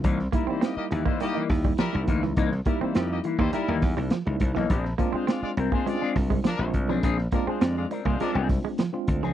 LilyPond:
<<
  \new Staff \with { instrumentName = "Horn section" } { \time 4/4 \key c \minor \tempo 4 = 103 r8 <g e' bes'>16 <g e' c''>16 <bes g' dis''>16 <bes g' dis''>16 r16 <g e' c''>16 <bes g' dis''>8 r8 <g e' bes'>8 r8 | r8 <g e' bes'>16 <g e' c''>16 <bes g' dis''>16 <bes g' dis''>16 r16 <g e' c''>16 <g e' bes'>8 r4. | r8 <f d' bes'>16 <aes f' c''>16 <aes f' d''>16 <aes f' d''>16 r16 <aes f' c''>16 <aes f' d''>8 r8 <f d' bes'>8 r8 | r8 <f d' bes'>16 <aes f' c''>16 <aes f' d''>16 <aes f' d''>16 r16 <aes f' c''>16 <f d' bes'>8 r4. | }
  \new Staff \with { instrumentName = "Clean electric guitar" } { \time 4/4 \key c \minor <e bes dis'>16 r8 <e bes dis'>16 r8 <e bes e'>16 <e bes dis'>16 r16 <e bes dis'>16 r4 <e bes dis'>16 r16 | <e bes dis'>16 r8 <e bes dis'>16 r8 <e bes e'>16 <e bes dis'>16 r16 <e bes dis'>16 r4 r16 <e bes dis'>16 | <c' d' aes'>16 r8 <c' d' aes'>16 r8 <c' d' bes'>16 <c' d' aes'>16 r16 <c' d' aes'>16 r4 r16 <c' d' aes'>16 | <c' d' aes'>16 r8 <c' d' aes'>16 r8 <c' d' bes'>16 <c' d' aes'>16 r16 <c' d' aes'>16 r4 r16 <c' d' aes'>16 | }
  \new Staff \with { instrumentName = "Tine electric piano" } { \time 4/4 \key c \minor r8 <g bes dis' e'>4~ <g bes dis' e'>16 r16 <g bes dis' e'>4 r16 <g bes dis' e'>8.~ | <g bes dis' e'>16 r16 <g bes dis' e'>4~ <g bes dis' e'>16 r16 <g bes dis' e'>4 r16 <g bes dis' e'>8. | r8 <aes c' d' f'>4~ <aes c' d' f'>16 r16 <aes c' des' d' f'>4 r16 <aes c' d' f'>8.~ | <aes c' d' f'>16 r16 <aes c' d' f'>4~ <aes c' d' f'>16 r16 <aes c' d' f'>4 r16 <aes c' d' f'>8. | }
  \new Staff \with { instrumentName = "Clean electric guitar" } { \time 4/4 \key c \minor r8 bes16 c'16 c'16 r8 bes16 g16 r8 g16 f16 r8 e16 | r8 bes16 c'16 c'16 r8 bes16 g16 r8 g16 f16 r8 e16 | r8 bes16 c'16 c'16 r8 bes16 aes16 r8 aes16 f16 r8 f16 | r8 bes16 c'16 c'16 r8 bes16 aes16 r8 aes16 f16 r8 f16 | }
  \new Staff \with { instrumentName = "Slap bass" } { \clef bass \time 4/4 \key c \minor c,8 r4 dis,16 r8. dis,8 r16 c,16 d,16 des,16 | c,8 r8 f,8 r16 dis,16 r16 dis,16 e,16 c,16 r16 des,16 c,16 b,,16 | bes,,8 r4 c,16 r8. c,8 r16 bes,,16 c,16 b,,16 | bes,,8 r8 f,8 r16 c,16 r16 c,8 r8. d,16 des,16 | }
  \new DrumStaff \with { instrumentName = "Drums" } \drummode { \time 4/4 <hh bd>16 sn16 <hh bd>8 <hh sn>8 hh16 bd16 hh8 <hho bd sn>16 bd16 <hh sn>8 <hh bd>16 sn16 | <hh bd>16 sn16 <hh bd>8 <hh sn>8 hh16 bd16 hh8 <hho bd sn>8 <hh sn>8 <hh bd>16 sn16 | <hh bd>16 sn16 <hh bd>8 <hh sn>8 hh16 bd16 hh8 <hho bd sn>16 bd16 <hh sn>8 <hh bd>16 sn16 | <hh bd>16 sn16 <hh bd>8 <hh sn>8 hh16 bd16 hh8 <hho bd sn>8 <hh sn>8 <hh bd>16 sn16 | }
>>